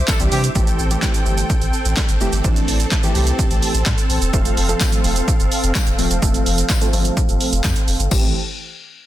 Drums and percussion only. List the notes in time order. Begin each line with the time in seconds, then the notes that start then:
0.08 kick, snare, clap, tambourine, shaker
0.20 closed hi-hat, shaker
0.32 open hi-hat, shaker
0.44 closed hi-hat, shaker
0.55 kick, shaker
0.67 closed hi-hat, shaker
0.79 shaker
0.91 closed hi-hat, shaker
1.02 kick, snare, clap, shaker
1.14 closed hi-hat, shaker
1.26 shaker
1.38 closed hi-hat, shaker
1.50 kick, shaker
1.62 closed hi-hat, shaker
1.73 shaker
1.85 closed hi-hat, shaker
1.97 kick, snare, clap, shaker
2.09 closed hi-hat, shaker
2.21 shaker
2.33 closed hi-hat, shaker
2.44 kick, shaker
2.56 closed hi-hat, shaker
2.68 open hi-hat, shaker
2.80 closed hi-hat, shaker
2.92 kick, snare, clap, shaker
3.03 closed hi-hat, shaker
3.15 open hi-hat, shaker
3.27 closed hi-hat, shaker
3.39 kick, shaker
3.51 closed hi-hat, shaker
3.62 open hi-hat, shaker
3.75 closed hi-hat, shaker
3.86 kick, snare, clap, shaker
3.98 closed hi-hat, shaker
4.10 open hi-hat, shaker
4.22 closed hi-hat, shaker
4.33 kick, shaker
4.45 closed hi-hat, shaker
4.57 open hi-hat, shaker
4.69 closed hi-hat, shaker
4.81 kick, snare, clap, tambourine, shaker
4.92 closed hi-hat, shaker
5.04 open hi-hat, shaker
5.16 closed hi-hat, shaker
5.28 kick, shaker
5.40 closed hi-hat, shaker
5.52 open hi-hat, shaker
5.64 closed hi-hat, shaker
5.75 kick, snare, clap, tambourine, shaker
5.87 closed hi-hat, shaker
5.99 open hi-hat, shaker
6.11 closed hi-hat, shaker
6.22 kick, shaker
6.34 closed hi-hat, shaker
6.46 open hi-hat, shaker
6.58 closed hi-hat, shaker
6.69 kick, snare, clap, tambourine, shaker
6.81 closed hi-hat, shaker
6.93 open hi-hat, shaker
7.05 closed hi-hat, shaker
7.17 kick, shaker
7.29 closed hi-hat, shaker
7.41 open hi-hat, shaker
7.53 closed hi-hat, shaker
7.64 kick, snare, clap, tambourine, shaker
7.76 closed hi-hat, shaker
7.88 open hi-hat, shaker
8.00 closed hi-hat, shaker
8.11 kick, crash, tambourine